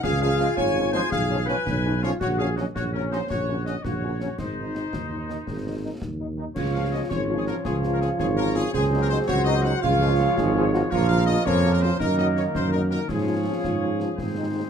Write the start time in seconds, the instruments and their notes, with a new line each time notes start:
0.04 tuba C#2, euphonium F4, woodwind section G#4, trumpet section F5, concert bass drum, snare, crash
0.21 french horn section F3 G#3 C#4, woodwind section G#4, trumpet section F5
0.39 french horn section F3 G#3 C#4, trombone section F3 G#3, snare
0.57 tuba G#1, woodwind section C#5, trumpet section G#5, concert bass drum, snare
0.75 french horn section F3 G#3 C#4
0.93 french horn section F3 G#3 C#4, trombone section F3 G#3, woodwind section C5, trumpet section G#5, snare
1.10 tuba B1, woodwind section G#4, trumpet section F5, concert bass drum, snare
1.30 french horn section F3 G#3 C#4
1.46 trombone section F3 C#4, french horn section F3 G#3 C#4, woodwind section B4, trumpet section G#5, snare
1.66 tuba B1, euphonium C#4, concert bass drum, snare
1.85 french horn section F3 G#3 C#4, euphonium D#4
2.02 trombone section F3 C#4, french horn section F3 G#3 C#4, woodwind section F4, euphonium F4, trumpet section C#5, snare
2.21 tuba A#1, woodwind section F#4, euphonium F#4, trumpet section C#5, concert bass drum, snare, crash
2.39 french horn section F#3 A#3 C#4, woodwind section G#4, trumpet section F5
2.57 trombone section F#3 C#4, french horn section F#3 A#3 C#4, woodwind section F#4, trumpet section D#5, snare
2.75 tuba A#1, euphonium C#4, woodwind section F#4, trumpet section C#5, concert bass drum, snare
2.93 french horn section F#3 A#3 C#4, woodwind section C#4, trumpet section A#4
3.11 trombone section F#3 C#4, french horn section F#3 A#3 C#4, woodwind section D#4, trumpet section C5, snare
3.30 tuba A#1, woodwind section F#4, trumpet section C#5, concert bass drum, snare
3.48 french horn section F#3 A#3 C#4
3.65 trombone section F#3 C#4, french horn section F#3 A#3 C#4, woodwind section F#4, trumpet section D#5, snare
3.83 tuba A#1, euphonium F4, woodwind section F#4, trumpet section C#5, concert bass drum, snare
4.02 french horn section F#3 A#3 C#4, euphonium F#4
4.20 trombone section F#3 C#4, french horn section F#3 A#3 C#4, euphonium C#4, snare
4.38 tuba G#1, euphonium D#4, woodwind section D#4, trumpet section C5, concert bass drum, snare, crash
4.58 french horn section D#3 D#4
4.75 trombone section D#3 D#4, french horn section D#3 D#4, snare
4.93 tuba D#2, concert bass drum, snare
5.12 french horn section D#3 D#4
5.28 trombone section D#3 D#4, french horn section D#3 D#4, snare
5.47 tuba G#1, concert bass drum, snare
5.66 french horn section D#3 D#4
5.83 trombone section D#3 D#4, french horn section D#3 D#4
6.02 tuba D#2, concert bass drum, snare
6.20 french horn section D#3 D#4
6.37 trombone section D#3 D#4, french horn section D#3 D#4
6.56 tuba C#2, trombone section F3 C#4, woodwind section F4 C#5, euphonium F4, trumpet section C#5, concert bass drum, snare, crash
6.74 french horn section F3 C#4 F4, trumpet section F5
6.92 french horn section F3 C#4 F4, trumpet section D#5
7.10 tuba G#1, euphonium C#4, woodwind section F4 C#5, trumpet section C#5, concert bass drum, snare
7.30 french horn section F3 C#4 F4
7.37 trumpet section G#4
7.46 french horn section F3 C#4 F4, trumpet section A#4, snare
7.64 tuba C#2, woodwind section F4 C#5, euphonium F4, trumpet section G#4, concert bass drum, snare
7.83 french horn section F3 C#4 F4, snare
7.93 trumpet section A#4
8.01 french horn section F3 C#4 F4, trumpet section G#4, snare
8.19 tuba G#1, woodwind section F4 C#5, trumpet section G#4, concert bass drum, snare
8.37 french horn section F3 C#4 F4, trumpet section A#4
8.55 french horn section F3 C#4 F4, trumpet section G#4, snare
8.72 tuba C#2, trombone section F#3 C4, woodwind section F#4 C5, trumpet section G#4, euphonium G#4, concert bass drum, snare, crash
8.92 french horn section F#3 C4 D#4
9.01 trumpet section A#4
9.09 french horn section F#3 C4 D#4, trumpet section C5
9.27 tuba C#2, euphonium F#4, trumpet section C#5, concert bass drum, snare
9.45 french horn section F#3 C4 D#4, trumpet section D#5
9.63 french horn section F#3 C4 D#4, trumpet section F#5, snare
9.81 tuba C#2, trombone section F3 G#3, euphonium F4, woodwind section F4 C#5, trumpet section F5, concert bass drum, snare
10.01 french horn section F3 G#3 F4, snare
10.20 french horn section F3 G#3 F4, snare
10.38 tuba G#1, euphonium G#4, concert bass drum, snare
10.55 french horn section F3 G#3 F4, euphonium G#4
10.73 french horn section F3 G#3 F4, euphonium F#4, snare
10.91 tuba A#1, trombone section F3 A#3, euphonium F4, woodwind section F4 A#4, trumpet section C#5, concert bass drum, snare, crash
11.09 french horn section F3 A#3 F4, trumpet section F5
11.26 french horn section F3 A#3 F4, trumpet section D#5
11.45 tuba F2, trombone section F3 A#3, euphonium C#4, woodwind section F4 A#4, trumpet section C#5, concert bass drum, snare
11.65 french horn section F3 A#3 F4
11.72 trumpet section A#4
11.82 french horn section F3 A#3 F4, trumpet section C5, snare
11.99 tuba F#2, trombone section D#3 A#3, euphonium D#4, woodwind section D#4 A#4, trumpet section A#4, concert bass drum, snare
12.18 french horn section F#3 A#3 D#4, trumpet section D#5, snare
12.36 french horn section F#3 A#3 D#4, trumpet section C#5, snare
12.55 tuba F#2, trumpet section C5, concert bass drum, snare
12.72 french horn section F#3 A#3 D#4, trumpet section A#4
12.90 french horn section F#3 A#3 D#4, trumpet section A#4, snare
13.08 tuba G#2, trombone section F3 C#4, euphonium F4, woodwind section F4 C#5, trumpet section G#4, concert bass drum, snare, crash
13.27 french horn section F3 C#4 F4
13.46 french horn section F3 C#4 F4
13.64 tuba G#2, concert bass drum, snare
13.82 french horn section F3 C#4 F4
14.00 french horn section F3 C#4 F4, snare
14.17 tuba G#2, trombone section D#3 C4, woodwind section D#4 C5, concert bass drum, snare
14.37 french horn section G#3 C4 D#4
14.54 french horn section G#3 C4 D#4